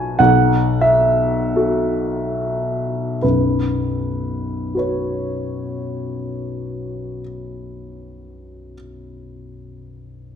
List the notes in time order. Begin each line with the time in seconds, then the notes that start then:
Already playing: B1 F#4 B4 G#5
0.19 B1 F#5
0.81 E5
1.56 F#4 A4
3.22 B1 F#2 B4
4.75 F#4 B4
4.79 C#5